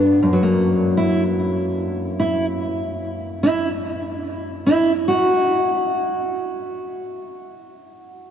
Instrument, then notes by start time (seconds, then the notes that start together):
steel-string acoustic guitar
Already playing: G2 B3 D4
0.22 F#2
0.33 F#3
0.43 A#3
0.97 E4
2.20 E4
3.43 E4
4.66 E4
5.08 F#4